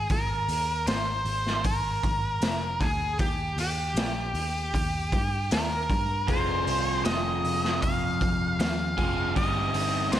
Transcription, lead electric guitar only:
0, 0, Header, 1, 2, 480
1, 0, Start_track
1, 0, Tempo, 771208
1, 60, Time_signature, 4, 2, 24, 8
1, 6347, End_track
2, 0, Start_track
2, 0, Title_t, "Lead electric guitar"
2, 0, Program_c, 0, 29
2, 69, Note_on_c, 0, 70, 86
2, 544, Note_off_c, 0, 70, 0
2, 547, Note_on_c, 0, 72, 70
2, 1030, Note_off_c, 0, 72, 0
2, 1033, Note_on_c, 0, 70, 86
2, 1750, Note_on_c, 0, 68, 67
2, 1773, Note_off_c, 0, 70, 0
2, 1973, Note_off_c, 0, 68, 0
2, 1992, Note_on_c, 0, 67, 83
2, 2232, Note_off_c, 0, 67, 0
2, 2240, Note_on_c, 0, 67, 75
2, 3437, Note_off_c, 0, 67, 0
2, 3439, Note_on_c, 0, 70, 75
2, 3906, Note_on_c, 0, 72, 97
2, 3929, Note_off_c, 0, 70, 0
2, 4388, Note_off_c, 0, 72, 0
2, 4390, Note_on_c, 0, 75, 76
2, 4844, Note_off_c, 0, 75, 0
2, 4867, Note_on_c, 0, 77, 96
2, 5347, Note_off_c, 0, 77, 0
2, 5355, Note_on_c, 0, 77, 85
2, 5804, Note_off_c, 0, 77, 0
2, 5832, Note_on_c, 0, 75, 96
2, 6297, Note_on_c, 0, 72, 77
2, 6320, Note_off_c, 0, 75, 0
2, 6347, Note_off_c, 0, 72, 0
2, 6347, End_track
0, 0, End_of_file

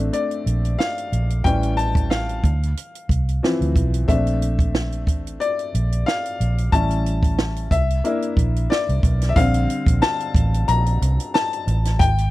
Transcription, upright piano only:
0, 0, Header, 1, 2, 480
1, 0, Start_track
1, 0, Tempo, 659341
1, 1055, Time_signature, 4, 2, 24, 8
1, 8958, End_track
2, 0, Start_track
2, 0, Title_t, "Upright piano"
2, 0, Program_c, 0, 0
2, 0, Control_c, 0, 64, 127
2, 0, Note_on_c, 0, 57, 51
2, 0, Note_on_c, 0, 60, 45
2, 0, Note_on_c, 0, 62, 58
2, 0, Note_on_c, 0, 76, 88
2, 95, Note_on_c, 0, 74, 70
2, 546, Note_off_c, 0, 57, 0
2, 546, Note_off_c, 0, 74, 0
2, 549, Note_off_c, 0, 60, 0
2, 551, Note_off_c, 0, 62, 0
2, 572, Note_on_c, 0, 77, 78
2, 1050, Note_on_c, 0, 79, 94
2, 1054, Note_on_c, 0, 55, 47
2, 1057, Note_on_c, 0, 61, 46
2, 1061, Note_on_c, 0, 52, 57
2, 1064, Control_c, 0, 64, 0
2, 1067, Note_off_c, 0, 76, 0
2, 1068, Note_off_c, 0, 77, 0
2, 1198, Control_c, 0, 64, 127
2, 1288, Note_on_c, 0, 81, 87
2, 1299, Note_off_c, 0, 79, 0
2, 1530, Note_on_c, 0, 77, 73
2, 1539, Note_off_c, 0, 81, 0
2, 1745, Note_off_c, 0, 55, 0
2, 1747, Note_off_c, 0, 61, 0
2, 1749, Note_off_c, 0, 52, 0
2, 1785, Control_c, 0, 64, 0
2, 1915, Control_c, 0, 64, 127
2, 2495, Note_on_c, 0, 53, 55
2, 2498, Note_on_c, 0, 60, 46
2, 2504, Note_on_c, 0, 52, 55
2, 2703, Note_off_c, 0, 77, 0
2, 2951, Note_off_c, 0, 53, 0
2, 2953, Note_off_c, 0, 60, 0
2, 2955, Note_off_c, 0, 52, 0
2, 2969, Note_on_c, 0, 76, 75
2, 2973, Note_on_c, 0, 57, 48
2, 2979, Note_on_c, 0, 60, 44
2, 2982, Control_c, 0, 64, 0
2, 2982, Note_on_c, 0, 62, 59
2, 3111, Control_c, 0, 64, 127
2, 3665, Note_off_c, 0, 57, 0
2, 3668, Note_off_c, 0, 60, 0
2, 3669, Note_off_c, 0, 62, 0
2, 3932, Note_on_c, 0, 74, 81
2, 3961, Note_off_c, 0, 76, 0
2, 4414, Note_on_c, 0, 77, 89
2, 4428, Note_off_c, 0, 74, 0
2, 4895, Note_on_c, 0, 81, 98
2, 4900, Note_on_c, 0, 55, 48
2, 4903, Control_c, 0, 64, 0
2, 4903, Note_on_c, 0, 61, 48
2, 4907, Note_on_c, 0, 64, 57
2, 4909, Note_off_c, 0, 77, 0
2, 5011, Control_c, 0, 64, 127
2, 5588, Note_off_c, 0, 55, 0
2, 5590, Note_off_c, 0, 61, 0
2, 5592, Note_off_c, 0, 64, 0
2, 5613, Note_on_c, 0, 76, 92
2, 5625, Control_c, 0, 64, 0
2, 5636, Note_off_c, 0, 81, 0
2, 5769, Control_c, 0, 64, 127
2, 5855, Note_on_c, 0, 58, 50
2, 5858, Note_on_c, 0, 62, 47
2, 5864, Note_on_c, 0, 64, 65
2, 6334, Note_on_c, 0, 74, 81
2, 6545, Note_off_c, 0, 76, 0
2, 6762, Note_on_c, 0, 76, 71
2, 6780, Note_off_c, 0, 74, 0
2, 6786, Note_off_c, 0, 58, 0
2, 6787, Note_off_c, 0, 62, 0
2, 6790, Note_off_c, 0, 64, 0
2, 6812, Note_off_c, 0, 76, 0
2, 6813, Note_on_c, 0, 77, 100
2, 6817, Note_on_c, 0, 50, 58
2, 6820, Note_on_c, 0, 55, 48
2, 6823, Control_c, 0, 64, 0
2, 6825, Note_on_c, 0, 60, 63
2, 6942, Control_c, 0, 64, 127
2, 7265, Note_off_c, 0, 77, 0
2, 7294, Note_on_c, 0, 81, 94
2, 7775, Note_on_c, 0, 82, 103
2, 7789, Note_off_c, 0, 81, 0
2, 8257, Note_on_c, 0, 81, 98
2, 8269, Note_off_c, 0, 82, 0
2, 8707, Note_off_c, 0, 50, 0
2, 8708, Note_off_c, 0, 55, 0
2, 8711, Note_off_c, 0, 60, 0
2, 8731, Note_on_c, 0, 79, 99
2, 8743, Control_c, 0, 64, 0
2, 8750, Note_off_c, 0, 81, 0
2, 8858, Control_c, 0, 64, 127
2, 8956, Note_off_c, 0, 79, 0
2, 8958, End_track
0, 0, End_of_file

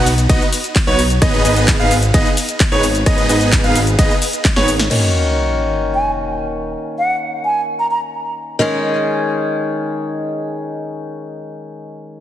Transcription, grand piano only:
0, 0, Header, 1, 2, 480
1, 0, Start_track
1, 0, Key_signature, 6, "major"
1, 0, Tempo, 461538
1, 1267, Time_signature, 4, 2, 24, 8
1, 12690, End_track
2, 0, Start_track
2, 0, Title_t, "Grand piano"
2, 0, Program_c, 0, 0
2, 307, Note_on_c, 0, 75, 106
2, 444, Note_off_c, 0, 75, 0
2, 906, Note_on_c, 0, 73, 106
2, 1043, Note_off_c, 0, 73, 0
2, 1267, Note_on_c, 0, 75, 110
2, 1478, Note_off_c, 0, 75, 0
2, 1507, Note_on_c, 0, 75, 84
2, 1838, Note_off_c, 0, 75, 0
2, 1866, Note_on_c, 0, 77, 89
2, 2003, Note_off_c, 0, 77, 0
2, 2226, Note_on_c, 0, 75, 105
2, 2363, Note_off_c, 0, 75, 0
2, 2826, Note_on_c, 0, 73, 105
2, 2963, Note_off_c, 0, 73, 0
2, 3186, Note_on_c, 0, 75, 106
2, 3397, Note_off_c, 0, 75, 0
2, 3426, Note_on_c, 0, 75, 88
2, 3757, Note_off_c, 0, 75, 0
2, 3786, Note_on_c, 0, 77, 84
2, 3923, Note_off_c, 0, 77, 0
2, 4146, Note_on_c, 0, 75, 104
2, 4283, Note_off_c, 0, 75, 0
2, 4746, Note_on_c, 0, 73, 106
2, 4883, Note_off_c, 0, 73, 0
2, 12690, End_track
0, 0, End_of_file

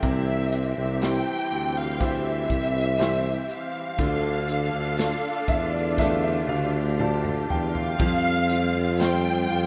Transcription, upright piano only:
0, 0, Header, 1, 2, 480
1, 0, Start_track
1, 0, Key_signature, 0, "major"
1, 0, Tempo, 991736
1, 15, Time_signature, 4, 2, 24, 8
1, 2416, Tempo, 1003344
1, 4652, End_track
2, 0, Start_track
2, 0, Title_t, "Upright piano"
2, 0, Program_c, 0, 0
2, 0, Control_c, 0, 64, 127
2, 13, Note_on_c, 0, 48, 61
2, 23, Control_c, 0, 64, 0
2, 116, Control_c, 0, 64, 127
2, 492, Note_on_c, 0, 64, 43
2, 494, Note_on_c, 0, 67, 42
2, 496, Note_on_c, 0, 72, 51
2, 957, Note_off_c, 0, 64, 0
2, 958, Note_off_c, 0, 67, 0
2, 959, Note_off_c, 0, 72, 0
2, 969, Note_on_c, 0, 64, 45
2, 970, Note_on_c, 0, 67, 42
2, 973, Note_on_c, 0, 72, 50
2, 1435, Note_off_c, 0, 64, 0
2, 1436, Note_off_c, 0, 67, 0
2, 1438, Note_off_c, 0, 72, 0
2, 1446, Note_on_c, 0, 52, 47
2, 1448, Note_on_c, 0, 67, 42
2, 1450, Note_on_c, 0, 72, 49
2, 1912, Note_off_c, 0, 48, 0
2, 1915, Note_off_c, 0, 52, 0
2, 1916, Note_off_c, 0, 67, 0
2, 1917, Note_off_c, 0, 72, 0
2, 1931, Note_on_c, 0, 50, 67
2, 1938, Control_c, 0, 64, 0
2, 2015, Control_c, 0, 64, 127
2, 2413, Note_on_c, 0, 62, 44
2, 2416, Note_on_c, 0, 65, 44
2, 2418, Note_on_c, 0, 69, 50
2, 2653, Note_on_c, 0, 76, 65
2, 2765, Note_off_c, 0, 76, 0
2, 2772, Note_on_c, 0, 74, 57
2, 2878, Note_off_c, 0, 62, 0
2, 2879, Note_off_c, 0, 65, 0
2, 2880, Note_off_c, 0, 69, 0
2, 2884, Note_off_c, 0, 74, 0
2, 2893, Note_on_c, 0, 62, 43
2, 2895, Note_on_c, 0, 65, 44
2, 2895, Note_on_c, 0, 76, 64
2, 2897, Note_on_c, 0, 69, 52
2, 3005, Note_off_c, 0, 76, 0
2, 3012, Note_on_c, 0, 76, 56
2, 3125, Note_off_c, 0, 76, 0
2, 3134, Note_on_c, 0, 77, 64
2, 3359, Note_off_c, 0, 77, 0
2, 3362, Note_off_c, 0, 62, 0
2, 3363, Note_off_c, 0, 65, 0
2, 3364, Note_off_c, 0, 69, 0
2, 3375, Note_on_c, 0, 62, 45
2, 3378, Note_on_c, 0, 65, 43
2, 3378, Note_on_c, 0, 81, 60
2, 3381, Note_on_c, 0, 69, 50
2, 3602, Note_off_c, 0, 81, 0
2, 3618, Note_on_c, 0, 79, 61
2, 3837, Note_off_c, 0, 50, 0
2, 3840, Note_off_c, 0, 79, 0
2, 3841, Note_off_c, 0, 62, 0
2, 3843, Note_off_c, 0, 65, 0
2, 3844, Note_off_c, 0, 69, 0
2, 3855, Note_on_c, 0, 53, 63
2, 3862, Control_c, 0, 64, 0
2, 3945, Control_c, 0, 64, 127
2, 4091, Note_on_c, 0, 65, 53
2, 4333, Note_on_c, 0, 72, 57
2, 4566, Note_off_c, 0, 65, 0
2, 4573, Note_on_c, 0, 65, 50
2, 4652, Note_off_c, 0, 53, 0
2, 4652, Note_off_c, 0, 65, 0
2, 4652, Note_off_c, 0, 72, 0
2, 4652, End_track
0, 0, End_of_file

